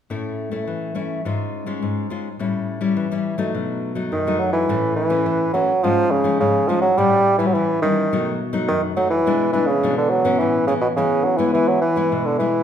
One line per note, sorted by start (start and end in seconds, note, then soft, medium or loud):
0.10 0.65 A2 medium
0.10 0.48 A3 soft
0.10 0.49 C#4 soft
0.10 0.49 E4 medium
0.51 0.91 A3 soft
0.51 0.91 C#4 soft
0.51 0.91 E4 medium
0.67 1.22 E3 medium
0.95 1.20 A3 soft
0.95 1.20 C#4 soft
0.95 1.20 E4 medium
1.25 1.80 G#2 medium
1.25 1.64 G#3 soft
1.25 1.64 C#4 medium
1.25 1.64 F4 medium
1.66 2.06 G#3 medium
1.66 2.06 C#4 soft
1.66 2.06 F4 medium
1.82 2.37 G#2 medium
2.10 2.27 G#3 soft
2.10 2.28 C#4 soft
2.10 2.28 F4 medium
2.39 2.94 A2 medium
2.39 2.78 G3 soft
2.39 2.78 C#4 soft
2.39 2.78 E4 medium
2.81 3.06 G3 medium
2.81 3.06 C#4 soft
2.81 3.06 E4 medium
2.97 3.51 E3 medium
3.11 3.35 G3 medium
3.11 3.36 C#4 medium
3.11 3.36 E4 medium
3.38 3.92 F#3 medium
3.38 3.92 A3 medium
3.38 3.92 D#4 medium
3.54 4.09 B2 medium
3.95 4.20 F#3 medium
3.95 4.21 A3 soft
3.95 4.21 D#4 medium
4.12 4.66 F#2 medium
4.12 4.41 D#3 medium
4.27 4.65 F#3 medium
4.27 4.65 A3 medium
4.27 4.65 D#4 medium
4.40 4.52 F#3 medium
4.53 4.94 E3 medium
4.69 5.23 A2 medium
4.69 5.07 E3 medium
4.69 5.07 A3 medium
4.69 5.08 C#4 medium
4.96 5.50 E3 medium
5.10 5.25 E3 medium
5.10 5.49 A3 medium
5.10 5.49 C#4 medium
5.26 5.53 E3 medium
5.54 5.71 E3 medium
5.54 5.85 F#3 medium
5.54 5.71 A3 medium
5.54 5.71 C#4 medium
5.83 6.38 G#2 medium
5.83 6.13 F3 medium
5.83 6.22 F3 medium
5.83 6.22 G#3 medium
5.83 6.22 C#4 medium
6.12 6.40 C#3 medium
6.24 6.63 F3 medium
6.24 6.64 G#3 medium
6.24 6.64 C#4 medium
6.41 6.95 G#2 medium
6.41 6.70 C#3 medium
6.68 6.81 F3 medium
6.68 6.86 F3 soft
6.68 6.86 G#3 medium
6.68 6.86 C#4 medium
6.82 6.99 F#3 medium
6.98 7.52 A2 medium
6.98 7.38 G3 loud
6.98 7.36 G3 medium
6.98 7.36 C#4 medium
6.98 7.36 E4 medium
7.38 7.49 E3 medium
7.38 7.78 G3 medium
7.38 7.78 C#4 medium
7.38 7.79 E4 medium
7.47 7.56 F#3 medium
7.54 7.82 E3 medium
7.54 8.09 E3 medium
7.82 8.36 D#3 medium
7.82 8.07 G3 soft
7.82 8.07 C#4 medium
7.82 8.08 E4 medium
8.13 8.67 B2 medium
8.13 8.39 F#3 medium
8.13 8.39 A3 medium
8.13 8.39 D#4 medium
8.53 8.92 F#3 medium
8.53 8.92 A3 medium
8.53 8.92 D#4 medium
8.69 9.23 F#2 medium
8.69 8.82 D#3 medium
8.96 9.14 F#3 soft
8.96 9.10 F#3 medium
8.96 9.14 A3 medium
8.96 9.14 D#4 medium
9.10 9.51 E3 medium
9.26 9.81 B2 medium
9.26 9.50 E3 medium
9.26 9.51 G#3 soft
9.26 9.51 D4 medium
9.53 9.68 E3 medium
9.53 9.71 E3 soft
9.53 9.71 G#3 medium
9.53 9.72 D4 medium
9.67 9.96 C#3 medium
9.83 10.38 B2 medium
9.83 10.22 E3 soft
9.83 10.22 G#3 soft
9.83 10.22 D4 medium
9.98 10.11 D3 medium
10.10 10.41 F#3 medium
10.25 10.64 E3 medium
10.25 10.64 B3 medium
10.25 10.64 C#4 medium
10.40 10.95 A2 medium
10.40 10.67 E3 medium
10.67 10.74 C#3 medium
10.67 10.93 E3 medium
10.67 10.93 B3 medium
10.67 10.93 C#4 medium
10.81 10.88 B2 medium
10.97 11.26 C#3 medium
10.97 11.52 E3 medium
10.97 11.36 B3 soft
10.97 11.36 C#4 medium
11.24 11.39 F#3 medium
11.38 11.53 E3 medium
11.38 11.78 G#3 medium
11.38 11.78 B3 medium
11.38 11.78 E4 medium
11.53 11.70 E3 medium
11.53 12.09 E3 medium
11.69 11.81 F#3 medium
11.81 12.28 E3 medium
11.96 12.35 G#3 medium
11.96 12.36 B3 soft
11.96 12.36 E4 medium
12.12 12.63 B2 medium
12.26 12.38 D3 medium
12.39 12.63 E3 medium
12.39 12.63 G#3 soft
12.39 12.63 B3 soft
12.39 12.63 E4 medium